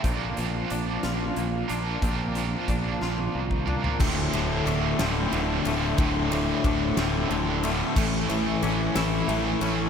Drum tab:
CC |------------|------------|x-----------|------------|
RD |------------|------------|--x-x-x-x-x-|x-x-x-x-x-x-|
HH |x-x-x-x-x-x-|x-x-x-------|------------|------------|
SD |------o-----|------o-----|------o-----|------o-----|
T1 |------------|-------o----|------------|------------|
FT |------------|----------oo|------------|------------|
BD |o-----------|o---o----o--|o-----------|o---o-------|

CC |x-----------|
RD |--x-x-x-x-x-|
HH |------------|
SD |------o-----|
T1 |------------|
FT |------------|
BD |o-----------|